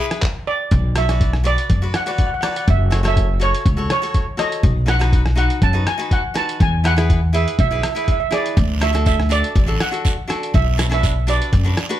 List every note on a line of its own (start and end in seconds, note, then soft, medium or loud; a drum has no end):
0.00 0.22 E4 medium
0.00 0.22 G#4 medium
0.00 0.23 B4 loud
0.11 cross-stick medium
0.11 closed hi-hat medium
0.22 kick loud
0.22 clap medium
0.47 0.98 D5 medium
0.71 1.55 B1 loud
0.71 kick loud
0.71 closed hi-hat medium
0.95 1.04 F#4 medium
0.95 1.04 B4 medium
0.95 1.05 D5 medium
0.95 1.48 E5 medium
0.95 cross-stick medium
0.95 closed hi-hat medium
1.09 1.31 F#4 medium
1.09 1.31 B4 medium
1.09 1.32 D5 medium
1.09 cross-stick medium
1.09 closed hi-hat medium
1.21 kick loud
1.21 closed hi-hat medium
1.33 cross-stick medium
1.44 1.67 F#4 medium
1.44 1.67 B4 medium
1.44 1.67 D5 medium
1.44 1.92 D5 medium
1.44 closed hi-hat medium
1.58 closed hi-hat medium
1.70 1.91 F#2 medium
1.70 kick loud
1.70 closed hi-hat medium
1.82 1.96 F#4 medium
1.82 1.97 B4 medium
1.82 1.97 D5 medium
1.94 2.02 F#5 medium
1.94 cross-stick medium
1.94 closed hi-hat loud
2.03 2.29 F#4 medium
2.03 2.29 B4 medium
2.03 2.10 F#5 medium
2.03 closed hi-hat medium
2.08 2.29 D5 medium
2.08 2.18 F#5 medium
2.18 2.25 F#5 medium
2.18 kick medium
2.18 closed hi-hat medium
2.27 2.33 F#5 medium
2.34 2.40 F#5 medium
2.41 2.67 F#4 medium
2.41 2.68 B4 medium
2.41 2.68 D5 medium
2.41 2.47 F#5 medium
2.41 cross-stick loud
2.41 closed hi-hat loud
2.48 2.55 F#5 medium
2.56 2.63 F#5 medium
2.56 closed hi-hat medium
2.68 3.51 F#1 loud
2.68 3.06 E5 medium
2.68 kick loud
2.68 closed hi-hat medium
2.91 2.99 F#4 medium
2.91 2.99 A4 medium
2.91 3.00 C#5 medium
2.91 cross-stick medium
2.91 closed hi-hat loud
3.03 3.26 F#4 medium
3.03 3.26 A4 medium
3.03 3.27 C#5 medium
3.03 cross-stick medium
3.03 closed hi-hat medium
3.08 3.43 E5 medium
3.17 kick loud
3.17 closed hi-hat medium
3.40 3.63 F#4 medium
3.40 3.63 A4 medium
3.40 3.63 C#5 medium
3.40 3.91 C#5 medium
3.40 closed hi-hat loud
3.55 closed hi-hat medium
3.66 3.87 C#2 medium
3.66 kick loud
3.66 closed hi-hat medium
3.77 3.92 F#4 medium
3.77 3.92 A4 medium
3.77 3.93 C#5 medium
3.90 4.42 C#5 medium
3.90 cross-stick loud
3.90 closed hi-hat loud
4.02 4.25 F#4 medium
4.02 4.25 A4 medium
4.02 4.25 C#5 medium
4.02 closed hi-hat medium
4.14 kick medium
4.14 closed hi-hat medium
4.37 4.63 F#4 medium
4.37 4.63 A4 medium
4.37 4.64 C#5 medium
4.37 4.90 D#5 medium
4.37 cross-stick medium
4.37 closed hi-hat medium
4.52 closed hi-hat medium
4.63 5.47 B1 loud
4.63 kick loud
4.63 closed hi-hat medium
4.86 4.95 D#4 medium
4.86 4.95 F#4 medium
4.86 4.96 B4 medium
4.86 5.37 F#5 loud
4.86 cross-stick loud
4.86 closed hi-hat medium
4.99 5.22 D#4 medium
4.99 5.23 F#4 medium
4.99 5.23 B4 medium
4.99 cross-stick medium
4.99 closed hi-hat medium
5.13 kick loud
5.13 closed hi-hat medium
5.26 cross-stick medium
5.35 5.59 D#4 medium
5.35 5.59 F#4 medium
5.35 5.59 B4 medium
5.35 5.63 F#5 loud
5.35 closed hi-hat medium
5.50 closed hi-hat medium
5.62 5.83 F#2 loud
5.62 5.86 A5 loud
5.62 kick loud
5.62 closed hi-hat medium
5.73 5.88 D#4 medium
5.73 5.89 F#4 medium
5.73 5.89 B4 medium
5.87 6.12 G#5 loud
5.87 cross-stick medium
5.87 closed hi-hat medium
5.98 6.21 D#4 medium
5.98 6.21 F#4 medium
5.98 6.21 B4 medium
5.98 closed hi-hat medium
6.11 6.37 F#5 medium
6.11 kick loud
6.11 closed hi-hat medium
6.34 6.59 D#4 medium
6.34 6.60 F#4 medium
6.34 6.60 B4 medium
6.34 6.48 A5 loud
6.34 cross-stick medium
6.34 closed hi-hat loud
6.49 closed hi-hat medium
6.60 7.44 E2 loud
6.60 6.87 G#5 medium
6.60 kick loud
6.60 closed hi-hat medium
6.84 6.92 E4 medium
6.84 6.92 G#4 medium
6.84 6.93 B4 medium
6.84 7.36 F#5 loud
6.84 cross-stick medium
6.84 closed hi-hat medium
6.97 7.19 E4 medium
6.97 7.20 G#4 medium
6.97 7.20 B4 medium
6.97 cross-stick medium
6.97 closed hi-hat medium
7.10 kick loud
7.10 closed hi-hat medium
7.33 7.56 E4 medium
7.33 7.56 G#4 medium
7.33 7.56 B4 medium
7.33 7.46 E5 medium
7.33 closed hi-hat loud
7.48 closed hi-hat medium
7.59 7.80 B1 medium
7.59 7.67 E5 loud
7.59 kick loud
7.59 closed hi-hat medium
7.68 7.85 E4 medium
7.68 7.86 G#4 medium
7.68 7.74 E5 medium
7.72 7.86 B4 medium
7.72 7.81 E5 medium
7.82 7.89 E5 medium
7.82 cross-stick medium
7.82 closed hi-hat loud
7.90 7.97 E5 medium
7.95 8.17 E4 medium
7.95 8.18 G#4 medium
7.95 8.18 B4 medium
7.95 8.03 E5 medium
7.95 closed hi-hat medium
8.04 8.11 E5 medium
8.04 kick medium
8.04 closed hi-hat medium
8.12 8.19 E5 medium
8.20 8.26 E5 medium
8.31 8.56 E4 medium
8.31 8.56 G#4 medium
8.31 8.57 B4 medium
8.31 8.83 D5 medium
8.31 cross-stick medium
8.31 closed hi-hat medium
8.46 closed hi-hat medium
8.57 9.41 D2 loud
8.57 kick loud
8.57 closed hi-hat medium
8.57 long guiro medium
8.80 8.89 D4 medium
8.80 8.89 F#4 medium
8.80 8.90 A4 medium
8.80 9.05 E5 medium
8.80 cross-stick medium
8.80 closed hi-hat medium
8.93 9.16 D4 medium
8.93 9.16 F#4 medium
8.93 9.16 A4 medium
8.93 cross-stick medium
8.93 closed hi-hat medium
9.06 9.29 E5 medium
9.06 kick loud
9.06 closed hi-hat medium
9.06 short guiro medium
9.20 cross-stick medium
9.29 9.52 D4 medium
9.29 9.53 F#4 medium
9.29 9.53 A4 medium
9.29 9.82 D5 loud
9.29 closed hi-hat medium
9.29 short guiro medium
9.44 closed hi-hat medium
9.55 9.76 A1 medium
9.55 kick loud
9.55 closed hi-hat medium
9.55 long guiro medium
9.66 9.82 D4 medium
9.66 9.82 F#4 medium
9.66 9.82 A4 medium
9.80 10.57 F#5 medium
9.80 cross-stick loud
9.80 closed hi-hat medium
9.91 10.14 D4 medium
9.91 10.14 F#4 medium
9.91 10.15 A4 medium
9.91 closed hi-hat medium
10.05 kick medium
10.05 closed hi-hat medium
10.05 short guiro medium
10.28 10.53 D4 medium
10.28 10.53 F#4 medium
10.28 10.54 A4 medium
10.28 cross-stick medium
10.28 closed hi-hat medium
10.43 closed hi-hat medium
10.54 11.38 B1 loud
10.54 10.89 E5 loud
10.54 kick loud
10.54 closed hi-hat medium
10.54 long guiro medium
10.77 10.86 D4 medium
10.77 10.86 F#4 medium
10.77 10.87 B4 medium
10.77 cross-stick loud
10.77 closed hi-hat loud
10.77 short guiro medium
10.90 11.13 D4 medium
10.90 11.13 F#4 medium
10.90 11.13 B4 medium
10.90 cross-stick medium
10.90 closed hi-hat medium
10.94 11.26 E5 loud
11.03 kick loud
11.03 closed hi-hat medium
11.03 short guiro medium
11.27 11.50 D4 medium
11.27 11.50 F#4 medium
11.27 11.50 B4 medium
11.27 12.00 D5 loud
11.27 closed hi-hat loud
11.27 short guiro medium
11.42 closed hi-hat medium
11.53 11.74 F#2 medium
11.53 kick loud
11.53 closed hi-hat medium
11.53 long guiro medium
11.64 11.79 D4 medium
11.64 11.79 F#4 medium
11.64 11.80 B4 medium
11.77 cross-stick medium
11.77 closed hi-hat medium
11.89 12.00 D4 loud
11.89 12.00 F#4 medium
11.89 12.00 B4 loud
11.89 closed hi-hat medium